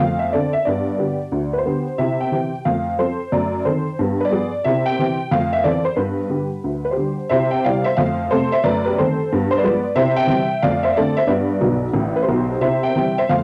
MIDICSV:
0, 0, Header, 1, 2, 480
1, 0, Start_track
1, 0, Key_signature, 0, "major"
1, 0, Tempo, 332410
1, 933, Time_signature, 4, 2, 24, 8
1, 19399, End_track
2, 0, Start_track
2, 0, Title_t, "Honky-tonk piano"
2, 0, Program_c, 0, 3
2, 0, Note_on_c, 0, 41, 66
2, 0, Note_on_c, 0, 77, 76
2, 12, Note_on_c, 0, 57, 42
2, 227, Control_c, 0, 64, 127
2, 265, Note_off_c, 0, 57, 0
2, 275, Note_off_c, 0, 77, 0
2, 275, Note_on_c, 0, 76, 63
2, 385, Note_off_c, 0, 41, 0
2, 453, Note_off_c, 0, 76, 0
2, 464, Control_c, 0, 64, 0
2, 474, Note_on_c, 0, 74, 69
2, 482, Note_on_c, 0, 50, 39
2, 485, Note_on_c, 0, 60, 38
2, 496, Note_on_c, 0, 69, 42
2, 738, Note_off_c, 0, 50, 0
2, 740, Note_off_c, 0, 60, 0
2, 749, Note_off_c, 0, 69, 0
2, 764, Note_off_c, 0, 74, 0
2, 767, Note_on_c, 0, 76, 70
2, 939, Note_off_c, 0, 76, 0
2, 942, Note_on_c, 0, 74, 66
2, 962, Note_on_c, 0, 43, 54
2, 993, Note_on_c, 0, 59, 37
2, 1176, Control_c, 0, 64, 127
2, 1241, Note_off_c, 0, 59, 0
2, 1358, Note_off_c, 0, 43, 0
2, 1421, Note_on_c, 0, 59, 33
2, 1427, Note_on_c, 0, 50, 29
2, 1434, Control_c, 0, 64, 0
2, 1436, Note_on_c, 0, 67, 40
2, 1683, Note_off_c, 0, 59, 0
2, 1688, Note_off_c, 0, 50, 0
2, 1694, Note_off_c, 0, 67, 0
2, 1902, Note_on_c, 0, 38, 52
2, 2201, Note_off_c, 0, 74, 0
2, 2213, Note_on_c, 0, 71, 55
2, 2284, Note_on_c, 0, 72, 51
2, 2294, Note_off_c, 0, 71, 0
2, 2308, Note_off_c, 0, 38, 0
2, 2390, Note_on_c, 0, 50, 38
2, 2393, Note_on_c, 0, 59, 40
2, 2409, Note_on_c, 0, 67, 38
2, 2650, Note_off_c, 0, 50, 0
2, 2652, Note_off_c, 0, 59, 0
2, 2664, Note_off_c, 0, 67, 0
2, 2856, Note_off_c, 0, 72, 0
2, 2862, Note_on_c, 0, 48, 53
2, 2864, Note_on_c, 0, 76, 68
2, 2889, Note_on_c, 0, 64, 34
2, 3104, Control_c, 0, 64, 127
2, 3145, Note_off_c, 0, 64, 0
2, 3162, Note_off_c, 0, 76, 0
2, 3185, Note_on_c, 0, 79, 57
2, 3268, Note_off_c, 0, 48, 0
2, 3345, Note_on_c, 0, 52, 34
2, 3345, Note_on_c, 0, 60, 35
2, 3355, Control_c, 0, 64, 0
2, 3358, Note_on_c, 0, 67, 42
2, 3607, Note_off_c, 0, 52, 0
2, 3607, Note_off_c, 0, 60, 0
2, 3617, Note_off_c, 0, 67, 0
2, 3829, Note_on_c, 0, 77, 65
2, 3832, Note_off_c, 0, 79, 0
2, 3835, Note_on_c, 0, 41, 53
2, 3859, Note_on_c, 0, 57, 37
2, 4062, Control_c, 0, 64, 127
2, 4112, Note_off_c, 0, 57, 0
2, 4237, Note_off_c, 0, 41, 0
2, 4304, Note_off_c, 0, 77, 0
2, 4312, Note_on_c, 0, 53, 35
2, 4316, Note_on_c, 0, 72, 65
2, 4320, Control_c, 0, 64, 0
2, 4324, Note_on_c, 0, 69, 43
2, 4325, Note_on_c, 0, 60, 36
2, 4573, Note_off_c, 0, 53, 0
2, 4582, Note_off_c, 0, 60, 0
2, 4582, Note_off_c, 0, 69, 0
2, 4788, Note_off_c, 0, 72, 0
2, 4797, Note_on_c, 0, 42, 63
2, 4798, Note_on_c, 0, 74, 66
2, 4833, Note_on_c, 0, 57, 38
2, 5041, Control_c, 0, 64, 127
2, 5083, Note_off_c, 0, 57, 0
2, 5199, Note_off_c, 0, 42, 0
2, 5270, Note_off_c, 0, 74, 0
2, 5271, Control_c, 0, 64, 0
2, 5272, Note_on_c, 0, 51, 37
2, 5273, Note_on_c, 0, 72, 57
2, 5283, Note_on_c, 0, 60, 36
2, 5283, Note_on_c, 0, 69, 42
2, 5533, Note_off_c, 0, 51, 0
2, 5541, Note_off_c, 0, 60, 0
2, 5541, Note_off_c, 0, 69, 0
2, 5748, Note_off_c, 0, 72, 0
2, 5759, Note_on_c, 0, 43, 63
2, 5786, Note_on_c, 0, 59, 37
2, 5985, Control_c, 0, 64, 127
2, 6038, Note_off_c, 0, 59, 0
2, 6072, Note_on_c, 0, 71, 65
2, 6135, Note_on_c, 0, 74, 80
2, 6147, Note_off_c, 0, 71, 0
2, 6160, Note_off_c, 0, 43, 0
2, 6229, Note_on_c, 0, 53, 41
2, 6243, Control_c, 0, 64, 0
2, 6243, Note_on_c, 0, 59, 40
2, 6245, Note_on_c, 0, 68, 50
2, 6492, Note_off_c, 0, 53, 0
2, 6502, Note_off_c, 0, 59, 0
2, 6503, Note_off_c, 0, 68, 0
2, 6704, Note_off_c, 0, 74, 0
2, 6708, Note_on_c, 0, 76, 75
2, 6718, Note_on_c, 0, 48, 69
2, 6748, Note_on_c, 0, 64, 44
2, 6962, Control_c, 0, 64, 127
2, 7000, Note_off_c, 0, 64, 0
2, 7007, Note_off_c, 0, 76, 0
2, 7015, Note_on_c, 0, 79, 84
2, 7121, Note_off_c, 0, 48, 0
2, 7195, Control_c, 0, 64, 0
2, 7206, Note_on_c, 0, 52, 37
2, 7210, Note_on_c, 0, 60, 44
2, 7215, Note_on_c, 0, 67, 52
2, 7464, Note_off_c, 0, 52, 0
2, 7467, Note_off_c, 0, 60, 0
2, 7471, Note_off_c, 0, 67, 0
2, 7669, Note_off_c, 0, 79, 0
2, 7674, Note_on_c, 0, 41, 68
2, 7678, Note_on_c, 0, 77, 86
2, 7707, Note_on_c, 0, 57, 48
2, 7909, Control_c, 0, 64, 127
2, 7959, Note_off_c, 0, 57, 0
2, 7973, Note_off_c, 0, 77, 0
2, 7980, Note_on_c, 0, 76, 79
2, 8078, Note_off_c, 0, 41, 0
2, 8144, Note_on_c, 0, 74, 79
2, 8152, Note_off_c, 0, 76, 0
2, 8155, Note_on_c, 0, 52, 43
2, 8161, Note_on_c, 0, 60, 43
2, 8166, Control_c, 0, 64, 0
2, 8167, Note_on_c, 0, 69, 46
2, 8416, Note_off_c, 0, 52, 0
2, 8421, Note_off_c, 0, 60, 0
2, 8425, Note_off_c, 0, 69, 0
2, 8444, Note_on_c, 0, 72, 72
2, 8446, Note_off_c, 0, 74, 0
2, 8609, Note_on_c, 0, 71, 59
2, 8613, Note_on_c, 0, 43, 53
2, 8624, Note_off_c, 0, 72, 0
2, 8649, Note_on_c, 0, 59, 37
2, 8885, Control_c, 0, 64, 127
2, 8907, Note_off_c, 0, 59, 0
2, 9027, Note_off_c, 0, 43, 0
2, 9085, Note_on_c, 0, 50, 32
2, 9097, Note_on_c, 0, 55, 32
2, 9101, Note_on_c, 0, 67, 35
2, 9118, Control_c, 0, 64, 0
2, 9355, Note_off_c, 0, 50, 0
2, 9363, Note_off_c, 0, 55, 0
2, 9366, Note_off_c, 0, 67, 0
2, 9585, Note_on_c, 0, 38, 43
2, 9866, Note_off_c, 0, 71, 0
2, 9887, Note_on_c, 0, 71, 54
2, 9977, Note_off_c, 0, 71, 0
2, 9978, Note_on_c, 0, 72, 45
2, 9993, Note_off_c, 0, 38, 0
2, 9999, Note_on_c, 0, 67, 38
2, 10051, Note_off_c, 0, 67, 0
2, 10064, Note_on_c, 0, 50, 33
2, 10070, Note_on_c, 0, 55, 30
2, 10072, Note_on_c, 0, 67, 35
2, 10329, Note_off_c, 0, 50, 0
2, 10333, Note_off_c, 0, 55, 0
2, 10335, Note_off_c, 0, 67, 0
2, 10528, Note_off_c, 0, 72, 0
2, 10534, Note_on_c, 0, 76, 79
2, 10549, Note_on_c, 0, 48, 68
2, 10550, Note_on_c, 0, 72, 63
2, 10570, Note_on_c, 0, 64, 43
2, 10787, Control_c, 0, 64, 127
2, 10827, Note_off_c, 0, 64, 0
2, 10828, Note_off_c, 0, 72, 0
2, 10841, Note_off_c, 0, 76, 0
2, 10841, Note_on_c, 0, 79, 69
2, 10867, Note_on_c, 0, 76, 51
2, 10956, Note_off_c, 0, 48, 0
2, 11023, Note_off_c, 0, 79, 0
2, 11024, Note_off_c, 0, 76, 0
2, 11040, Note_on_c, 0, 77, 68
2, 11047, Note_on_c, 0, 55, 42
2, 11049, Control_c, 0, 64, 0
2, 11052, Note_on_c, 0, 48, 37
2, 11054, Note_on_c, 0, 64, 44
2, 11056, Note_on_c, 0, 74, 59
2, 11305, Note_off_c, 0, 55, 0
2, 11309, Note_off_c, 0, 48, 0
2, 11310, Note_off_c, 0, 64, 0
2, 11323, Note_off_c, 0, 74, 0
2, 11326, Note_on_c, 0, 76, 84
2, 11334, Note_off_c, 0, 77, 0
2, 11345, Note_on_c, 0, 72, 61
2, 11503, Note_off_c, 0, 72, 0
2, 11504, Note_on_c, 0, 77, 80
2, 11506, Note_off_c, 0, 76, 0
2, 11516, Note_on_c, 0, 41, 68
2, 11534, Note_on_c, 0, 72, 54
2, 11549, Note_on_c, 0, 57, 44
2, 11755, Control_c, 0, 64, 127
2, 11801, Note_off_c, 0, 57, 0
2, 11920, Note_off_c, 0, 41, 0
2, 11967, Note_off_c, 0, 72, 0
2, 11985, Note_off_c, 0, 77, 0
2, 11995, Note_on_c, 0, 72, 76
2, 12003, Control_c, 0, 64, 0
2, 12003, Note_on_c, 0, 48, 44
2, 12012, Note_on_c, 0, 69, 67
2, 12013, Note_on_c, 0, 60, 53
2, 12017, Note_on_c, 0, 57, 47
2, 12262, Note_off_c, 0, 48, 0
2, 12269, Note_off_c, 0, 60, 0
2, 12272, Note_off_c, 0, 57, 0
2, 12279, Note_off_c, 0, 69, 0
2, 12291, Note_off_c, 0, 72, 0
2, 12306, Note_on_c, 0, 76, 83
2, 12319, Note_on_c, 0, 72, 65
2, 12470, Note_off_c, 0, 72, 0
2, 12471, Note_on_c, 0, 74, 83
2, 12474, Note_on_c, 0, 42, 70
2, 12475, Note_off_c, 0, 76, 0
2, 12500, Note_on_c, 0, 71, 64
2, 12512, Note_on_c, 0, 57, 52
2, 12708, Control_c, 0, 64, 127
2, 12763, Note_off_c, 0, 57, 0
2, 12764, Note_off_c, 0, 71, 0
2, 12769, Note_off_c, 0, 74, 0
2, 12790, Note_on_c, 0, 71, 70
2, 12808, Note_on_c, 0, 67, 47
2, 12878, Note_off_c, 0, 42, 0
2, 12955, Note_off_c, 0, 67, 0
2, 12957, Note_off_c, 0, 71, 0
2, 12965, Control_c, 0, 64, 0
2, 12969, Note_on_c, 0, 51, 47
2, 12974, Note_on_c, 0, 72, 67
2, 12979, Note_on_c, 0, 60, 51
2, 12980, Note_on_c, 0, 57, 43
2, 12981, Note_on_c, 0, 69, 54
2, 13226, Note_off_c, 0, 51, 0
2, 13233, Note_off_c, 0, 60, 0
2, 13234, Note_off_c, 0, 57, 0
2, 13410, Note_off_c, 0, 69, 0
2, 13439, Note_off_c, 0, 72, 0
2, 13463, Note_on_c, 0, 43, 72
2, 13478, Note_on_c, 0, 59, 44
2, 13671, Control_c, 0, 64, 127
2, 13727, Note_off_c, 0, 59, 0
2, 13730, Note_on_c, 0, 72, 80
2, 13817, Note_off_c, 0, 72, 0
2, 13832, Note_on_c, 0, 74, 67
2, 13842, Note_on_c, 0, 71, 60
2, 13854, Note_off_c, 0, 43, 0
2, 13916, Note_on_c, 0, 56, 54
2, 13919, Note_on_c, 0, 53, 49
2, 13922, Control_c, 0, 64, 0
2, 13925, Note_on_c, 0, 59, 58
2, 14176, Note_off_c, 0, 56, 0
2, 14178, Note_off_c, 0, 53, 0
2, 14183, Note_off_c, 0, 59, 0
2, 14358, Note_off_c, 0, 71, 0
2, 14372, Note_on_c, 0, 48, 79
2, 14376, Note_on_c, 0, 76, 90
2, 14392, Note_off_c, 0, 74, 0
2, 14392, Note_on_c, 0, 72, 72
2, 14404, Note_on_c, 0, 64, 53
2, 14625, Control_c, 0, 64, 127
2, 14662, Note_off_c, 0, 64, 0
2, 14667, Note_off_c, 0, 72, 0
2, 14669, Note_off_c, 0, 76, 0
2, 14678, Note_on_c, 0, 79, 95
2, 14691, Note_on_c, 0, 76, 69
2, 14784, Note_off_c, 0, 48, 0
2, 14829, Note_on_c, 0, 52, 45
2, 14839, Note_on_c, 0, 55, 43
2, 14848, Note_on_c, 0, 60, 50
2, 14884, Control_c, 0, 64, 0
2, 15102, Note_off_c, 0, 52, 0
2, 15109, Note_off_c, 0, 55, 0
2, 15116, Note_off_c, 0, 60, 0
2, 15299, Note_off_c, 0, 76, 0
2, 15338, Note_off_c, 0, 79, 0
2, 15341, Note_on_c, 0, 77, 82
2, 15348, Note_on_c, 0, 74, 73
2, 15349, Note_on_c, 0, 41, 68
2, 15379, Note_on_c, 0, 57, 40
2, 15600, Control_c, 0, 64, 127
2, 15624, Note_off_c, 0, 74, 0
2, 15632, Note_off_c, 0, 57, 0
2, 15639, Note_on_c, 0, 76, 72
2, 15642, Note_off_c, 0, 77, 0
2, 15660, Note_on_c, 0, 72, 57
2, 15753, Note_off_c, 0, 41, 0
2, 15818, Note_off_c, 0, 72, 0
2, 15819, Note_off_c, 0, 76, 0
2, 15832, Control_c, 0, 64, 0
2, 15839, Note_on_c, 0, 74, 80
2, 15841, Note_on_c, 0, 50, 50
2, 15845, Note_on_c, 0, 69, 64
2, 15849, Note_on_c, 0, 57, 44
2, 15858, Note_on_c, 0, 60, 47
2, 16099, Note_off_c, 0, 50, 0
2, 16104, Note_off_c, 0, 57, 0
2, 16111, Note_off_c, 0, 60, 0
2, 16113, Note_off_c, 0, 69, 0
2, 16126, Note_on_c, 0, 76, 86
2, 16130, Note_off_c, 0, 74, 0
2, 16145, Note_on_c, 0, 72, 57
2, 16276, Note_on_c, 0, 43, 64
2, 16276, Note_on_c, 0, 74, 64
2, 16287, Note_on_c, 0, 71, 54
2, 16300, Note_off_c, 0, 72, 0
2, 16302, Note_off_c, 0, 76, 0
2, 16302, Note_on_c, 0, 59, 49
2, 16551, Control_c, 0, 64, 127
2, 16565, Note_off_c, 0, 59, 0
2, 16694, Note_off_c, 0, 43, 0
2, 16766, Note_on_c, 0, 35, 58
2, 16771, Note_on_c, 0, 47, 53
2, 16795, Control_c, 0, 64, 0
2, 17130, Note_off_c, 0, 35, 0
2, 17133, Note_off_c, 0, 47, 0
2, 17232, Note_on_c, 0, 33, 59
2, 17234, Note_on_c, 0, 45, 56
2, 17494, Note_off_c, 0, 71, 0
2, 17546, Note_off_c, 0, 74, 0
2, 17557, Note_on_c, 0, 71, 67
2, 17601, Note_off_c, 0, 33, 0
2, 17602, Note_off_c, 0, 45, 0
2, 17647, Note_off_c, 0, 71, 0
2, 17654, Note_on_c, 0, 72, 59
2, 17662, Note_on_c, 0, 67, 47
2, 17738, Note_on_c, 0, 47, 63
2, 17739, Note_on_c, 0, 35, 62
2, 18097, Note_off_c, 0, 35, 0
2, 18097, Note_off_c, 0, 47, 0
2, 18184, Note_off_c, 0, 67, 0
2, 18204, Note_off_c, 0, 72, 0
2, 18207, Note_on_c, 0, 48, 66
2, 18212, Note_on_c, 0, 76, 75
2, 18226, Note_on_c, 0, 72, 61
2, 18247, Note_on_c, 0, 64, 40
2, 18463, Control_c, 0, 64, 127
2, 18501, Note_off_c, 0, 72, 0
2, 18502, Note_off_c, 0, 64, 0
2, 18515, Note_off_c, 0, 76, 0
2, 18531, Note_on_c, 0, 79, 76
2, 18553, Note_on_c, 0, 76, 51
2, 18618, Note_off_c, 0, 48, 0
2, 18707, Control_c, 0, 64, 0
2, 18707, Note_on_c, 0, 52, 38
2, 18712, Note_on_c, 0, 55, 44
2, 18721, Note_on_c, 0, 60, 41
2, 18967, Note_off_c, 0, 52, 0
2, 18971, Note_off_c, 0, 55, 0
2, 18977, Note_off_c, 0, 60, 0
2, 18981, Note_off_c, 0, 76, 0
2, 19003, Note_off_c, 0, 79, 0
2, 19035, Note_on_c, 0, 76, 77
2, 19046, Note_on_c, 0, 72, 58
2, 19188, Note_off_c, 0, 72, 0
2, 19193, Note_off_c, 0, 76, 0
2, 19198, Note_on_c, 0, 41, 58
2, 19198, Note_on_c, 0, 77, 78
2, 19212, Note_on_c, 0, 72, 49
2, 19231, Note_on_c, 0, 57, 42
2, 19399, Note_off_c, 0, 41, 0
2, 19399, Note_off_c, 0, 57, 0
2, 19399, Note_off_c, 0, 72, 0
2, 19399, Note_off_c, 0, 77, 0
2, 19399, End_track
0, 0, End_of_file